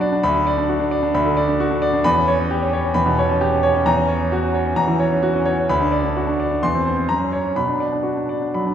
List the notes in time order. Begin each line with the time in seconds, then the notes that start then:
Already playing: B2 F#3 D4 F#4 B5
0.00 D5
0.13 D4
0.23 D2 B5
0.35 D4
0.47 D5
0.58 D4
0.69 F#4
0.79 D4
0.91 D5
1.03 D4
1.14 D2 B5
1.25 D3
1.37 D5
1.48 D4
1.60 F#4
1.71 D4
1.82 D5
1.93 D4
2.04 E2 B5
2.16 C#4
2.28 C#5
2.40 C#4
2.51 G4
2.62 C#4
2.73 C#5
2.85 C#4
2.94 E2 B5
3.06 B2
3.19 C#5
3.29 C#4
3.41 G4
3.52 C#4
3.63 C#5
3.75 C#4
3.86 E2 A#5
3.97 C#4
4.08 C#5
4.21 C#4
4.32 F#4
4.43 C#4
4.54 C#5
4.66 C#4
4.76 E2 A#5
4.87 E3
5.00 C#5
5.12 C#4
5.23 F#4
5.33 C#4
5.45 C#5
5.58 C#4
5.69 D2 B5
5.80 D4
5.92 D5
6.04 D4
6.17 F#4
6.27 D4
6.40 D5
6.52 D4
6.63 E2 C6
6.75 C4
6.86 C5
6.96 C4
7.09 F#2 A#5
7.20 C#4
7.32 C#5
7.44 C#4
7.56 B2 B5
7.68 D4
7.80 D5
7.92 D4
8.03 F#4
8.17 D4
8.29 D5
8.42 D4
8.54 F#3 B5
8.66 D4